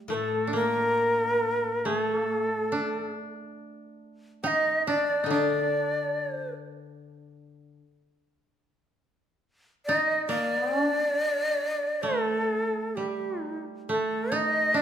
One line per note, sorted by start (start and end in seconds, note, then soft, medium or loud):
0.00 0.16 G3 soft
0.08 2.71 A2 soft
0.08 0.59 A3 medium
0.08 0.15 A#4 medium
0.14 0.52 A4 medium
0.47 2.72 D4 soft
0.53 1.91 A#3 medium
0.53 1.87 A#4 medium
1.85 4.74 A3 medium
1.85 1.97 G#4 medium
1.97 3.15 A4 medium
2.72 4.50 D4 medium
4.44 4.93 D#4 medium
4.44 4.83 D#5 medium
4.44 4.48 G5 medium
4.87 5.30 D4 medium
4.87 5.25 D5 medium
5.24 7.78 D3 medium
5.24 5.36 D#4 soft
5.30 7.73 D4 medium
5.30 6.51 D5 medium
9.86 10.35 D#4 medium
9.86 10.25 D#5 medium
10.27 10.84 A#3 medium
10.27 12.04 D5 loud
10.84 12.71 D4 medium
12.02 13.89 A3 medium
12.02 12.97 A4 medium
12.96 13.95 G3 soft
12.96 13.43 G4 medium
13.43 13.65 D#4 medium
13.89 14.82 A3 medium
13.89 14.36 A4 medium
14.32 14.80 D#4 medium
14.32 14.78 D#5 medium
14.74 14.82 D4 medium
14.74 14.82 D5 medium